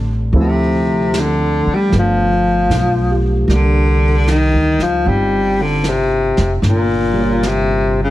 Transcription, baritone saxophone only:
0, 0, Header, 1, 2, 480
1, 0, Start_track
1, 0, Tempo, 790514
1, 199, Time_signature, 4, 2, 24, 8
1, 4920, End_track
2, 0, Start_track
2, 0, Title_t, "Baritone saxophone"
2, 0, Program_c, 0, 67
2, 238, Note_on_c, 0, 48, 62
2, 729, Note_on_c, 0, 50, 71
2, 739, Note_off_c, 0, 48, 0
2, 1058, Note_on_c, 0, 55, 62
2, 1067, Note_off_c, 0, 50, 0
2, 1189, Note_off_c, 0, 55, 0
2, 1204, Note_on_c, 0, 53, 71
2, 1957, Note_off_c, 0, 53, 0
2, 2144, Note_on_c, 0, 50, 73
2, 2613, Note_on_c, 0, 51, 75
2, 2622, Note_off_c, 0, 50, 0
2, 2931, Note_on_c, 0, 53, 67
2, 2940, Note_off_c, 0, 51, 0
2, 3083, Note_on_c, 0, 55, 75
2, 3093, Note_off_c, 0, 53, 0
2, 3408, Note_on_c, 0, 50, 71
2, 3417, Note_off_c, 0, 55, 0
2, 3573, Note_on_c, 0, 48, 66
2, 3583, Note_off_c, 0, 50, 0
2, 3965, Note_off_c, 0, 48, 0
2, 4057, Note_on_c, 0, 46, 70
2, 4534, Note_on_c, 0, 48, 67
2, 4544, Note_off_c, 0, 46, 0
2, 4853, Note_off_c, 0, 48, 0
2, 4873, Note_on_c, 0, 49, 56
2, 4920, Note_off_c, 0, 49, 0
2, 4920, End_track
0, 0, End_of_file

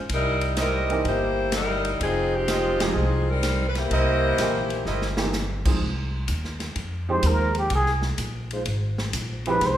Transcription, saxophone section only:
0, 0, Header, 1, 2, 480
1, 0, Start_track
1, 0, Key_signature, -4, "minor"
1, 0, Tempo, 475813
1, 105, Time_signature, 4, 2, 24, 8
1, 9859, End_track
2, 0, Start_track
2, 0, Title_t, "Saxophone section"
2, 0, Program_c, 0, 65
2, 140, Note_on_c, 0, 55, 80
2, 140, Note_on_c, 0, 70, 91
2, 142, Note_on_c, 0, 63, 82
2, 143, Note_on_c, 0, 64, 86
2, 569, Note_off_c, 0, 55, 0
2, 569, Note_off_c, 0, 70, 0
2, 571, Note_off_c, 0, 63, 0
2, 571, Note_off_c, 0, 64, 0
2, 614, Note_on_c, 0, 55, 71
2, 617, Note_on_c, 0, 63, 73
2, 617, Note_on_c, 0, 64, 77
2, 619, Note_on_c, 0, 70, 92
2, 1046, Note_off_c, 0, 55, 0
2, 1047, Note_off_c, 0, 63, 0
2, 1047, Note_off_c, 0, 64, 0
2, 1049, Note_off_c, 0, 70, 0
2, 1092, Note_on_c, 0, 64, 83
2, 1092, Note_on_c, 0, 67, 88
2, 1093, Note_on_c, 0, 58, 84
2, 1097, Note_on_c, 0, 72, 95
2, 1557, Note_off_c, 0, 64, 0
2, 1557, Note_off_c, 0, 67, 0
2, 1558, Note_off_c, 0, 58, 0
2, 1560, Note_off_c, 0, 72, 0
2, 1574, Note_on_c, 0, 70, 87
2, 1575, Note_on_c, 0, 63, 73
2, 1575, Note_on_c, 0, 64, 80
2, 1576, Note_on_c, 0, 55, 82
2, 2006, Note_off_c, 0, 63, 0
2, 2006, Note_off_c, 0, 64, 0
2, 2006, Note_off_c, 0, 70, 0
2, 2007, Note_off_c, 0, 55, 0
2, 2049, Note_on_c, 0, 63, 86
2, 2052, Note_on_c, 0, 68, 92
2, 2053, Note_on_c, 0, 53, 77
2, 2055, Note_on_c, 0, 60, 77
2, 2361, Note_off_c, 0, 63, 0
2, 2363, Note_off_c, 0, 53, 0
2, 2363, Note_off_c, 0, 68, 0
2, 2364, Note_off_c, 0, 60, 0
2, 2378, Note_on_c, 0, 63, 81
2, 2379, Note_on_c, 0, 53, 77
2, 2380, Note_on_c, 0, 67, 92
2, 2385, Note_on_c, 0, 60, 82
2, 2843, Note_off_c, 0, 63, 0
2, 2844, Note_off_c, 0, 53, 0
2, 2844, Note_off_c, 0, 67, 0
2, 2847, Note_off_c, 0, 60, 0
2, 2864, Note_on_c, 0, 60, 70
2, 2865, Note_on_c, 0, 53, 74
2, 2869, Note_on_c, 0, 68, 84
2, 2871, Note_on_c, 0, 63, 72
2, 3323, Note_off_c, 0, 63, 0
2, 3326, Note_off_c, 0, 60, 0
2, 3327, Note_off_c, 0, 53, 0
2, 3328, Note_off_c, 0, 68, 0
2, 3333, Note_on_c, 0, 55, 78
2, 3335, Note_on_c, 0, 63, 78
2, 3337, Note_on_c, 0, 70, 91
2, 3338, Note_on_c, 0, 60, 71
2, 3705, Note_off_c, 0, 55, 0
2, 3706, Note_off_c, 0, 63, 0
2, 3707, Note_off_c, 0, 60, 0
2, 3707, Note_off_c, 0, 70, 0
2, 3721, Note_on_c, 0, 71, 60
2, 3802, Note_off_c, 0, 71, 0
2, 3814, Note_on_c, 0, 64, 86
2, 3815, Note_on_c, 0, 67, 87
2, 3816, Note_on_c, 0, 58, 82
2, 3817, Note_on_c, 0, 72, 94
2, 5396, Note_off_c, 0, 64, 0
2, 5397, Note_off_c, 0, 58, 0
2, 5397, Note_off_c, 0, 67, 0
2, 5398, Note_off_c, 0, 72, 0
2, 9859, End_track
0, 0, End_of_file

